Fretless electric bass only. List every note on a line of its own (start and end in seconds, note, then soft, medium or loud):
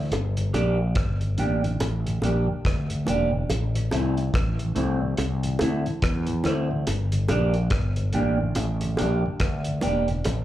0.11 0.51 G1 loud
0.54 0.93 A#1 loud
0.96 1.35 G1 medium
1.38 1.78 A1 medium
1.81 2.20 A1 loud
2.22 2.46 A#1 medium
2.65 3.04 D2 medium
3.08 3.47 E1 medium
3.50 3.89 A1 loud
3.92 4.31 C2 loud
4.34 4.73 A1 medium
4.76 5.15 C2 medium
5.18 5.57 C2 loud
5.61 5.84 D2 medium
6.03 6.42 E2 medium
6.45 6.84 D2 medium
6.87 7.26 G1 loud
7.29 7.69 A#1 loud
7.71 8.11 G1 medium
8.14 8.53 A1 medium
8.57 8.96 A1 loud
9.01 9.23 A#1 loud
9.40 9.80 D2 loud
9.85 10.23 E1 medium
10.26 10.45 A1 loud